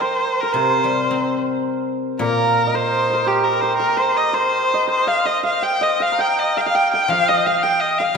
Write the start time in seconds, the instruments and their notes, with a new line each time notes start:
Already playing: hammered dulcimer A#4 F5 G5 A#5
0.01 erhu C5, hammered dulcimer C5
0.41 erhu A#4, hammered dulcimer A#4
0.53 guzheng C3, erhu C5, hammered dulcimer C5
0.84 guzheng G3
1.11 guzheng C4
2.19 guzheng A#2, erhu A#4, hammered dulcimer A#4
2.67 hammered dulcimer D#5
2.74 hammered dulcimer C5, erhu C5
3.10 hammered dulcimer A#4 C5
3.26 hammered dulcimer G4, erhu G4
3.44 erhu A#4
3.61 erhu C5, hammered dulcimer C5
3.78 erhu A#4, hammered dulcimer A#4
3.97 erhu C5, hammered dulcimer C5
4.17 erhu D#5
4.33 hammered dulcimer C5, erhu C5
4.74 hammered dulcimer D#5
4.87 hammered dulcimer C5, erhu C5
5.07 hammered dulcimer F5, erhu F5
5.25 hammered dulcimer D#5, erhu D#5
5.43 hammered dulcimer F5, erhu F5
5.62 hammered dulcimer G5, erhu G5
5.81 hammered dulcimer D#5, erhu D#5
6.00 hammered dulcimer F5, erhu F5
6.12 hammered dulcimer A#5
6.19 hammered dulcimer G5, erhu G5
6.39 erhu D#5
6.57 hammered dulcimer F5, erhu F5
6.61 erhu G5
6.66 hammered dulcimer F5, erhu F5
6.75 hammered dulcimer G5, erhu G5
6.92 erhu G5, hammered dulcimer G5
7.08 guzheng F3, erhu F5, hammered dulcimer F5
7.28 erhu D#5, hammered dulcimer D#5
7.46 hammered dulcimer F5, erhu F5
7.63 erhu G5, hammered dulcimer G5
7.80 erhu D#5
7.98 erhu F5, hammered dulcimer F5